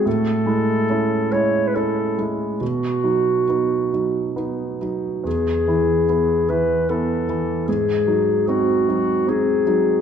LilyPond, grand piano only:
\new Staff \with { instrumentName = "Grand piano" } { \time 3/4 \key e \major \tempo 4 = 73 a,8 <gis e'>8 <cis' e'>8 <gis e'>8 <cis' e'>8 <gis e'>8 | b,8 <fis dis'>8 <b dis'>8 <fis dis'>8 <b dis'>8 <fis dis'>8 | e,8 <e e'>8 <b e'>8 <e e'>8 <b e'>8 <e e'>8 | gis,8 <fis dis'>8 <bis dis'>8 <fis dis'>8 <bis dis'>8 <fis dis'>8 | }